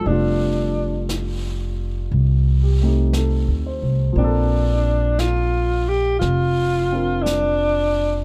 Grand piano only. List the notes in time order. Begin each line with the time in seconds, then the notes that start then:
0.00 F3 G3
0.06 A3 D4
0.12 F4
2.63 G4
2.82 A3 C4 D#4 G4
3.15 A4
3.67 C5
4.13 F3 A#3
4.19 C4 D4
4.24 A4
6.92 C4 D4 F4 A#4